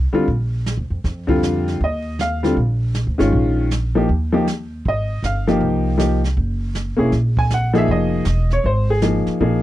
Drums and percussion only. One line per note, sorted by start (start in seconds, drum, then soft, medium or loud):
0.28 brush sweep soft
0.28 kick soft
0.66 snare medium
0.66 hi-hat pedal medium
1.04 brush sweep soft
1.04 kick soft
1.04 snare soft
1.29 kick medium
1.43 snare medium
1.43 hi-hat pedal medium
1.68 snare soft
1.81 brush sweep soft
1.81 kick soft
2.19 snare soft
2.19 hi-hat pedal medium
2.44 snare soft
2.57 brush sweep soft
2.57 kick soft
2.94 snare medium
2.94 hi-hat pedal soft
3.19 snare soft
3.33 brush sweep soft
3.33 kick soft
3.71 snare medium
3.71 hi-hat pedal medium
4.09 brush sweep soft
4.09 kick soft
4.47 snare medium
4.47 hi-hat pedal medium
4.85 brush sweep soft
4.85 kick soft
5.24 snare medium
5.24 hi-hat pedal medium
5.48 snare soft
5.61 brush sweep soft
5.61 kick soft
5.99 snare medium
5.99 hi-hat pedal medium
6.24 snare soft
6.37 brush sweep soft
6.37 kick soft
6.75 snare medium
6.75 hi-hat pedal medium
7.12 brush sweep soft
7.12 kick soft
7.12 snare soft
7.37 kick soft
7.50 snare medium
7.50 hi-hat pedal medium
7.75 snare soft
7.88 brush sweep soft
7.88 kick soft
8.25 snare medium
8.25 hi-hat pedal soft
8.50 snare soft
8.64 brush sweep soft
8.64 kick soft
9.02 snare medium
9.02 hi-hat pedal medium
9.27 snare soft
9.41 brush sweep soft
9.41 kick soft